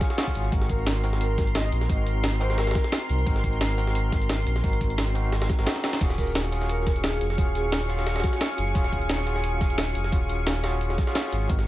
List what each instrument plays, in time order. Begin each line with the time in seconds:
Already playing: tine electric piano C#4 F4 F#4 G#4, analog synth pad G#4 F5 C#6
0.01 kick, snare, closed hi-hat, tambourine
0.09 tine electric piano C#4 F4 F#4 G#4, snare, closed hi-hat
0.17 tine electric piano C#4 F4 F#4 G#4, snare, closed hi-hat
0.27 kick, tambourine
0.35 sub bass G#1, closed hi-hat, tambourine
0.44 closed hi-hat
0.51 sub bass G#1, tine electric piano C4 D#4 F#4 A#4, analog synth pad A#4 C6, kick, closed hi-hat
0.61 snare
0.69 soft synth lead A#4, kick, closed hi-hat, tambourine
0.79 closed hi-hat
0.87 snare, closed hi-hat
1.03 tine electric piano C4 D#4 F#4 A#4, closed hi-hat, tambourine
1.13 snare, tambourine
1.21 soft synth lead A#4, closed hi-hat
1.38 sub bass G#1, kick, snare, closed hi-hat, tambourine
1.47 closed hi-hat
1.55 soft synth lead D#5, snare, closed hi-hat
1.64 soft synth lead D#5, closed hi-hat, tambourine
1.72 sub bass A#1, closed hi-hat, tambourine
1.81 snare
1.88 sub bass G#1, tine electric piano C4 D#4 F#4 A#4, kick, closed hi-hat, open hi-hat
2.06 closed hi-hat, tambourine
2.24 snare, closed hi-hat
2.40 tine electric piano C4 D#4 F#4 A#4, soft synth lead C5, closed hi-hat, tambourine
2.50 snare, tambourine
2.58 soft synth lead A#4, snare, closed hi-hat
2.67 snare, closed hi-hat
2.71 snare, closed hi-hat
2.75 kick, snare, closed hi-hat, tambourine
2.84 snare, closed hi-hat
2.92 snare, closed hi-hat
3.01 tambourine
3.09 sub bass C2, closed hi-hat, tambourine
3.19 closed hi-hat
3.26 sub bass G#1, tine electric piano C4 D#4 F#4 A#4, kick, closed hi-hat
3.36 snare
3.44 kick, closed hi-hat, tambourine
3.53 closed hi-hat
3.61 snare, closed hi-hat
3.78 tine electric piano C4 D#4 F#4 A#4, closed hi-hat, tambourine
3.87 snare, tambourine
3.95 closed hi-hat
4.12 sub bass G#1, kick, snare, closed hi-hat, tambourine
4.22 closed hi-hat
4.29 snare, closed hi-hat
4.39 closed hi-hat, tambourine
4.47 sub bass A#1, closed hi-hat, tambourine
4.56 snare
4.63 sub bass G#1, tine electric piano C4 D#4 F#4 A#4, kick, closed hi-hat, open hi-hat
4.73 closed hi-hat
4.81 kick, closed hi-hat, tambourine
4.90 closed hi-hat
4.98 snare, closed hi-hat
5.14 tine electric piano C4 D#4 F#4 A#4, closed hi-hat, tambourine
5.24 tambourine
5.32 snare, closed hi-hat
5.42 snare, closed hi-hat
5.50 kick, snare, closed hi-hat, tambourine
5.58 sub bass G#1, tine electric piano C4 D#4 F#4 A#4, snare, closed hi-hat
5.66 tine electric piano C4 D#4 F#4 G#4, snare, closed hi-hat
5.76 snare, tambourine
5.84 snare, closed hi-hat, tambourine
5.93 snare, closed hi-hat
6.00 sub bass D#1, tine electric piano C#4 F4 F#4 G#4, analog synth pad G#4 F5 C#6, kick, closed hi-hat, crash
6.10 snare
6.18 soft synth lead A#4, kick, closed hi-hat, tambourine
6.27 closed hi-hat
6.35 snare, closed hi-hat
6.52 tine electric piano C#4 F4 F#4 G#4, closed hi-hat, tambourine
6.62 snare, tambourine
6.69 soft synth lead A#4, closed hi-hat
6.87 sub bass D#1, kick, snare, closed hi-hat, tambourine
6.96 closed hi-hat
7.04 soft synth lead G#4, snare, closed hi-hat
7.13 closed hi-hat, tambourine
7.21 sub bass F1, closed hi-hat, tambourine
7.30 snare
7.37 sub bass D#1, tine electric piano C#4 F4 F#4 G#4, kick, closed hi-hat, open hi-hat
7.55 soft synth lead G#4, closed hi-hat, tambourine
7.72 snare, closed hi-hat
7.88 tine electric piano C#4 F4 F#4 G#4, closed hi-hat, tambourine
7.99 snare, tambourine
8.07 snare, closed hi-hat
8.16 soft synth lead F#4, snare, closed hi-hat
8.20 snare, closed hi-hat
8.24 kick, snare, closed hi-hat, tambourine
8.33 snare, closed hi-hat
8.41 snare, closed hi-hat
8.50 tambourine
8.58 sub bass F#1, closed hi-hat, tambourine
8.67 closed hi-hat
8.74 sub bass D#1, tine electric piano C#4 F4 F#4 G#4, kick, closed hi-hat
8.84 snare
8.92 kick, closed hi-hat, tambourine
9.02 closed hi-hat
9.09 snare, closed hi-hat
9.26 tine electric piano C#4 F4 F#4 G#4, closed hi-hat, tambourine
9.36 snare, tambourine
9.44 closed hi-hat
9.61 sub bass D#1, kick, snare, closed hi-hat, tambourine
9.70 closed hi-hat
9.78 snare, closed hi-hat
9.87 closed hi-hat, tambourine
9.95 sub bass F1, closed hi-hat, tambourine
10.04 snare
10.11 sub bass D#1, tine electric piano C#4 F4 F#4 G#4, kick, closed hi-hat, open hi-hat
10.29 closed hi-hat, tambourine
10.47 snare, closed hi-hat
10.63 tine electric piano C#4 F4 F#4 G#4, snare, closed hi-hat, tambourine
10.73 tambourine
10.81 closed hi-hat
10.90 snare
10.98 kick, snare, closed hi-hat, tambourine
11.07 tine electric piano C#4 F4 F#4 G#4, snare, closed hi-hat
11.15 tine electric piano C#4 F4 F#4 G#4, snare, closed hi-hat
11.25 tambourine
11.32 sub bass G#1, closed hi-hat, tambourine
11.42 closed hi-hat
11.49 sub bass G#1, tine electric piano C4 D#4 F#4 A#4, analog synth pad A#4 C6, kick, closed hi-hat
11.59 snare